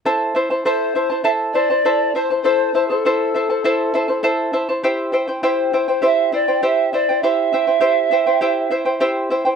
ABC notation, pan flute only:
X:1
M:4/4
L:1/16
Q:1/4=100
K:Am
V:1 name="Pan flute"
z4 c4 e2 d4 c2 | c2 c A8- A3 z2 | z4 c4 e2 d2 e2 d2 | e12 z4 |]